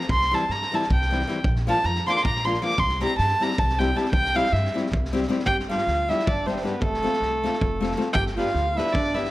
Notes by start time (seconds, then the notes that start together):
0.01 snare
0.09 C2 C6, kick
0.21 snare
0.31 E3 G3 C4 E4 A5, snare
0.49 G2 A#5, snare
0.62 snare
0.72 E3 G3 C4 E4 A5, snare
0.82 snare
0.90 C2 G5, kick
1.01 snare
1.10 E3 G3 C4 E4, snare
1.20 snare
1.27 E3 G3 C4 E4, snare
1.44 A#1, kick
1.56 snare
1.67 F3 A#3 D4 F4 A5, snare
1.84 F2 A#5, snare
1.95 snare
2.07 F3 A#3 D4 F4 C6 D6, snare
2.16 C6, snare
2.24 A#1 A#5, kick
2.35 snare
2.45 F3 A#3 D4 F4 C6, snare
2.54 snare
2.61 F3 A#3 D4 F4 D6, snare
2.70 snare
2.78 C2 C6, kick
2.89 snare
3.00 G3 C4 E4 G4 A#5, snare
3.18 G2 A5, snare
3.28 snare
3.40 G3 C4 E4 G4 A#5, snare
3.50 snare
3.58 C2 A5, kick
3.69 snare
3.79 G3 C4 E4 G4 G5, snare
3.95 G3 C4 E4 G4 A5, snare
4.05 snare
4.12 C2 G5, kick
4.25 snare
4.34 G3 C4 E4 G4 F5, snare
4.46 snare
4.52 G2 E5, snare
4.65 snare
4.74 G3 C4 E4 G4, snare
4.86 snare
4.92 C2, kick
5.05 snare
5.13 G3 C4 E4 G4, snare
5.22 snare
5.29 G3 C4 E4 G4, snare
5.39 snare
5.46 G1 G4 G5, kick
5.60 snare
5.69 G3 B3 D4 F4 G4 F5, snare
5.78 snare
5.87 D2, snare
6.08 G3 B3 D4 E4 G4 E5, snare
6.19 snare
6.26 G1 D4 D5, kick
6.46 G3 B3 C4 D4 G4 C5, snare
6.57 snare
6.63 G3 B3 D4 G4 B4, snare
6.80 F1 A3 A4, kick
6.94 snare
7.03 A3 C4 F4 A4, snare
7.13 snare
7.21 C2, snare
7.43 A3 C4 F4 A4, snare
7.53 snare
7.61 F1, kick
7.81 A3 C4 F4 A4, snare
7.91 snare
7.97 A3 C4 F4 A4, snare
8.13 G1 G4 G5, kick
8.26 snare
8.36 B3 D4 F4 G4 B4 F5, snare
8.46 snare
8.54 D2, snare
8.75 B3 D4 E4 G4 E5, snare
8.79 B4
8.87 snare
8.93 G1 D4 D5, kick
9.13 B3 D4 E4 G4 B4 E5, snare
9.24 snare